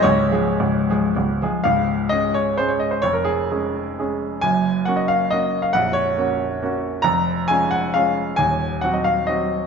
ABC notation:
X:1
M:3/4
L:1/16
Q:1/4=133
K:Db
V:1 name="Grand piano"
d8- d2 z2 | f4 e2 d2 c d e c | d B A8- A2 | a4 g e f2 e3 f |
g2 d8- d2 | b4 a2 g2 f4 | a4 g e f2 e4 |]
V:2 name="Grand piano" clef=bass
[D,,,D,,]2 [F,A,A]2 [D,,,D,,]2 [F,A,A]2 [D,,,D,,]2 [F,A,A]2 | [D,,,D,,]4 [A,DA]4 [A,DA]4 | [F,,,F,,]4 [A,DA]4 [A,DA]4 | [G,,,G,,]4 [B,DG]4 [B,DG]4 |
[B,,,,B,,,]4 [B,DG]4 [B,DG]4 | [F,,,F,,]4 [A,DF]4 [A,DF]4 | [E,,,E,,]4 [G,CG]4 [G,CG]4 |]